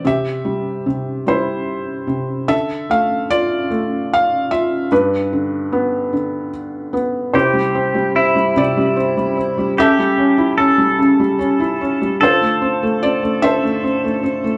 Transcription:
<<
  \new Staff \with { instrumentName = "Pedal steel guitar" } { \time 6/8 \key c \major \tempo 4. = 49 r2. | r2. | r2. | g'4 e'2 |
g'4 a'2 | a'2. | }
  \new Staff \with { instrumentName = "Felt piano" } { \time 6/8 \key c \major << { e''4. c''4. | e''8 f''8 d''4 f''8 e''8 | b'2 r4 | c''4. d''4. |
e''2 r4 | c''4 d''8 e''4. | } \\ { g'4. e'4. | a'4. r4. | d'2 r4 | <e' g'>4. g'4. |
<g' a'>2 r4 | <f' a'>4. <a' c''>4. | } >> }
  \new Staff \with { instrumentName = "Felt piano" } { \time 6/8 \key c \major c8 g8 c8 g4 c8 | d8 a8 f'8 a4 f'8 | g,8 d8 b8 d4 b8 | c16 g16 c'16 g16 c'16 g16 c16 g16 c'16 g16 c'16 g16 |
cis16 g16 cis'16 e'16 cis'16 g16 cis16 g16 cis'16 e'16 cis'16 g16 | d16 a16 c'16 a16 c'16 a16 d16 a16 c'16 a16 c'16 a16 | }
>>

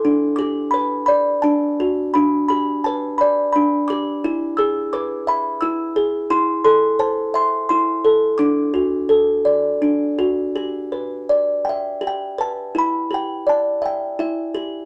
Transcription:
\new Staff \with { instrumentName = "Music box" } { \time 3/4 \key g \major \tempo 4 = 85 << { d'''8 d'''8 b''8 b''8 a''8. r16 | b''8 b''8 a''8 b''8 b''8 d'''8~ | d'''8 e'''8 d'''8 b''8 e'''8. r16 | c'''8 c'''8 a''8 c'''8 c'''4 |
d'''2 r4 | r4. e''8 g''8 a''8 | b''8 g''8 a''8 g''8 e''8. r16 | } \\ { d'8 g'8 b'8 d''8 d'8 fis'8 | d'8 g'8 b'8 d''8 d'8 g'8 | e'8 gis'8 b'8 e''8 e'8 gis'8 | e'8 a'8 c''8 e''8 e'8 a'8 |
d'8 fis'8 a'8 d''8 d'8 fis'8 | g'8 b'8 d''8 g''8 g'8 b'8 | e'8 g'8 d''8 e''8 e'8 g'8 | } >> }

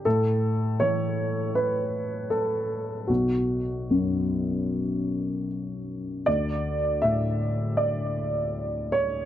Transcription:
<<
  \new Staff \with { instrumentName = "Upright piano" } { \time 4/4 \key d \major \tempo 4 = 78 a'4 cis''4 b'4 a'4 | fis'2. r4 | d''4 e''4 d''4. cis''8 | }
  \new Staff \with { instrumentName = "Upright piano" } { \clef bass \time 4/4 \key d \major a,4 e2. | b,,4 fis,2. | d,4 a,2. | }
>>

